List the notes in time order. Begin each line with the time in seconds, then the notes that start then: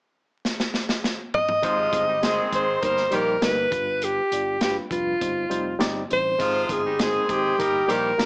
0.45 snare
0.60 snare
0.74 snare
0.89 snare
1.04 snare
1.34 D#5, mid tom
1.49 mid tom
1.62 G#1 C3 F3 G#3 C4 D#4 F4 C5, kick, closed hi-hat
1.93 G1 G#3 C4 D#4 C5, kick, closed hi-hat
2.07 G3 D#4 G4
2.21 D#3 G#3 C4 D#4 G#4 C5, snare, closed hi-hat
2.52 G#1 G#3 C4 D#4 C5, kick, closed hi-hat
2.81 G1 G3 A#3 D#4 A#4 C5, kick, closed hi-hat
2.97 snare
3.11 A#1 D#3 G3 A#3 D#4 G4 A#4 C5, closed hi-hat
3.41 G1 G3 A#3 D#4 A#4 B4, snare, closed hi-hat
3.71 G1 G3 D4 F4 B4, kick, closed hi-hat
4.02 G4, closed hi-hat
4.31 G1 G3 D4 F4 D5, closed hi-hat
4.61 G3 D4 F4 G4 B4, snare, closed hi-hat
4.90 F1 G3 D4 F4 B4, kick, closed hi-hat
5.20 G1 G3 C4 D#4 C5, kick, closed hi-hat
5.50 F1 G3 C4 D#4 C5, closed hi-hat
5.79 G1 G3 C4 D#4 D5, snare, closed hi-hat
6.09 A1 G3 C4 D#4 C5, closed hi-hat
6.38 G#1 C3 F3 G#3 C4 D#4 F4 C5, kick, closed hi-hat
6.69 G1 G#3 C4 D#4 G#4 C5, kick, closed hi-hat
6.84 G3 D#4 G4
6.99 D#3 G#3 C4 D#4 G#4 C5, snare, closed hi-hat
7.28 G#1 G#3 C4 D#4 G4 C5, kick, closed hi-hat
7.58 G1 G3 A#3 D#4 A#4, kick, closed hi-hat
7.87 A#1 D#3 G3 A#3 D#4 G4 A#4 C5, closed hi-hat
8.18 G1 G3 A#3 D#4 A#4, snare, closed hi-hat